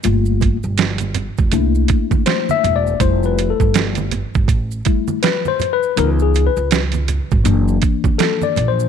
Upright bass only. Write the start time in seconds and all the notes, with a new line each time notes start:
0.05 G1
0.64 G1
1.39 F1
1.53 C2
2.64 E1
3.00 F1
3.60 G1
4.35 G1
4.48 A1
5.98 C#2
6.57 C#2
7.32 G#1
7.45 F#1
8.57 A#1